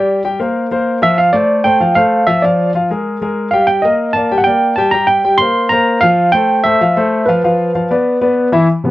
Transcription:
Already playing: grand piano G3 G4 G5, tine electric piano D5
0.24 grand piano G3 G4 G5
0.40 grand piano A#3 A#4 C5
0.71 grand piano A#3 A#4 C5
1.02 grand piano F3 F4 F5, tine electric piano E5
1.18 tine electric piano F5
1.33 grand piano A3 A4 C5, tine electric piano D5
1.64 grand piano A3 A4 C5, tine electric piano G5
1.80 grand piano F3 F4 F5
1.95 grand piano A3 A4 C5, tine electric piano F5
2.27 grand piano F3 F4 F5, tine electric piano E5
2.42 grand piano F3 F4 F5, tine electric piano D5
2.75 grand piano F3 F4 F5
2.90 grand piano G#3 G#4 A#4
3.22 grand piano G#3 G#4 A#4
3.51 grand piano G3 G4 G5, tine electric piano F5
3.67 tine electric piano G5
3.82 grand piano A#3 A#4 D#5, tine electric piano D#5
4.13 grand piano A#3 A#4 D5, tine electric piano A5
4.31 grand piano G3 G4 G5
4.38 tine electric piano F#5
4.44 grand piano A#3 A#4 D5, tine electric piano G5
4.76 grand piano G3 G4 G5, tine electric piano A5
4.91 grand piano G3 G4 G5, tine electric piano A#5
5.07 tine electric piano G5
5.24 grand piano G3 G4 G5
5.38 grand piano A#3 A#4 C5, tine electric piano C6
5.69 grand piano A#3 A#4 C5, tine electric piano A#5
6.01 grand piano F3 F4 F5, tine electric piano F5
6.32 grand piano A3 A4 C5, tine electric piano G5
6.64 grand piano A3 A4 C5, tine electric piano E5
6.81 grand piano F3 F4 F5
6.97 grand piano A3 A4 C5
7.26 grand piano F3 F4 F5, tine electric piano B4
7.44 grand piano F3 F4 F5
7.75 grand piano F3 F4 F5
7.91 grand piano B3 B4 D5
8.21 grand piano B3 B4 D5
8.52 grand piano E3 E4 E5
8.84 grand piano C3 E3 B3

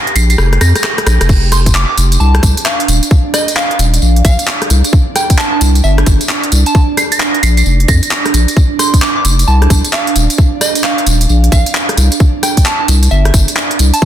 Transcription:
Already playing: ambient pad G4 G5, synth bell A#6
0.07 closed hi-hat
0.16 sub bass A#1, synth bell C7, open hi-hat, tambourine
0.30 synth bell C7, closed hi-hat, tambourine
0.38 sub bass F1, cross-stick, tambourine
0.53 cross-stick, closed hi-hat
0.61 sub bass F2, synth bell A#6, cross-stick, open hi-hat, tambourine
0.75 cross-stick, closed hi-hat, tambourine
0.84 cross-stick, clap
0.98 cross-stick, closed hi-hat
1.07 sub bass A#1, cross-stick, open hi-hat, tambourine
1.21 sub bass F1, cross-stick, closed hi-hat, tambourine
1.29 ambient pad D4 D5, kick, tambourine, crash
1.52 synth bell C6, cross-stick, open hi-hat, tambourine
1.66 kick, closed hi-hat, tambourine
1.75 synth bell D6, clap, tambourine
1.89 synth bell D6
1.97 sub bass F1, open hi-hat, tambourine
2.12 closed hi-hat, tambourine
2.20 sub bass C2, synth bell A5, tambourine
2.35 cross-stick, closed hi-hat
2.43 sub bass C2, kick, open hi-hat, tambourine
2.57 closed hi-hat, tambourine
2.65 synth bell F5, clap, tambourine
2.80 closed hi-hat
2.88 sub bass D#1, open hi-hat, tambourine
3.03 closed hi-hat, tambourine
3.11 kick, tambourine
3.34 synth bell D#5, cross-stick, open hi-hat, tambourine
3.48 closed hi-hat, tambourine
3.56 synth bell F5, clap
3.71 closed hi-hat
3.79 sub bass D#1, open hi-hat, tambourine
3.94 closed hi-hat, tambourine
4.02 sub bass A#1, tambourine
4.16 closed hi-hat
4.25 sub bass A#1, synth bell F5, kick, open hi-hat, tambourine
4.39 closed hi-hat, tambourine
4.47 clap
4.62 cross-stick, closed hi-hat
4.70 sub bass C2, open hi-hat, tambourine
4.84 closed hi-hat, tambourine
4.93 kick, tambourine
5.16 synth bell G5, cross-stick, open hi-hat, tambourine
5.30 kick, closed hi-hat, tambourine
5.38 synth bell A5, clap
5.53 synth bell A5
5.61 sub bass C2, open hi-hat, tambourine
5.75 closed hi-hat, tambourine
5.84 sub bass G1, synth bell E5, tambourine
5.98 cross-stick, closed hi-hat
6.06 sub bass G1, kick, open hi-hat, tambourine
6.21 closed hi-hat, tambourine
6.29 clap
6.43 closed hi-hat
6.52 sub bass C2, open hi-hat, tambourine
6.66 synth bell A5, closed hi-hat, tambourine
6.75 kick, tambourine
6.97 synth bell C7, cross-stick, open hi-hat, tambourine
7.12 synth bell A#6, closed hi-hat, tambourine
7.20 clap, tambourine
7.34 closed hi-hat
7.43 sub bass A#1, synth bell C7, open hi-hat, tambourine
7.57 synth bell C7, closed hi-hat, tambourine
7.66 sub bass F1, tambourine
7.80 closed hi-hat
7.88 sub bass F2, synth bell A#6, kick, open hi-hat, tambourine
8.03 closed hi-hat, tambourine
8.11 clap, tambourine
8.26 cross-stick, closed hi-hat
8.34 sub bass A#1, open hi-hat, tambourine
8.48 closed hi-hat, tambourine
8.57 kick, tambourine
8.79 synth bell C6, cross-stick, open hi-hat, tambourine
8.94 kick, closed hi-hat, tambourine
9.02 synth bell D6, clap
9.16 synth bell D6
9.25 sub bass F1, open hi-hat, tambourine
9.39 closed hi-hat, tambourine
9.48 sub bass C2, synth bell A5, tambourine
9.62 cross-stick, closed hi-hat
9.70 sub bass C2, kick, open hi-hat, tambourine
9.85 closed hi-hat, tambourine
9.93 synth bell F5, clap
10.07 closed hi-hat
10.16 sub bass D#1, open hi-hat, tambourine
10.30 closed hi-hat, tambourine
10.38 kick, tambourine
10.61 synth bell D#5, cross-stick, open hi-hat, tambourine
10.75 closed hi-hat, tambourine
10.84 synth bell F5, clap
10.98 closed hi-hat
11.07 sub bass D#1, open hi-hat, tambourine
11.21 closed hi-hat, tambourine
11.29 sub bass A#1, tambourine
11.44 closed hi-hat
11.52 sub bass A#1, synth bell F5, kick, open hi-hat, tambourine
11.66 closed hi-hat, tambourine
11.75 clap, tambourine
11.89 cross-stick, closed hi-hat
11.97 sub bass C2, open hi-hat, tambourine
12.12 closed hi-hat, tambourine
12.20 kick, tambourine
12.43 synth bell G5, cross-stick, open hi-hat, tambourine
12.57 kick, closed hi-hat, tambourine
12.66 synth bell A5, clap
12.80 synth bell A5
12.88 sub bass C2, open hi-hat, tambourine
13.03 closed hi-hat, tambourine
13.11 sub bass G1, synth bell E5, tambourine
13.25 cross-stick, closed hi-hat
13.34 sub bass G1, kick, open hi-hat, tambourine
13.48 closed hi-hat, tambourine
13.56 clap, tambourine
13.71 closed hi-hat
13.79 sub bass C2, open hi-hat, tambourine
13.94 synth bell A5, closed hi-hat, tambourine
14.02 kick, tambourine

